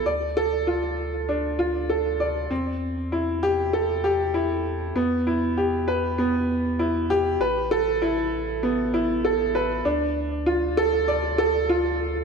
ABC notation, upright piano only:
X:1
M:4/4
L:1/8
Q:1/4=98
K:Ddor
V:1 name="Upright piano"
d A F z D F A d | C z E G A G E z | B, E G B B, z E G | B A E z B, E A B |
D z F A d A F z |]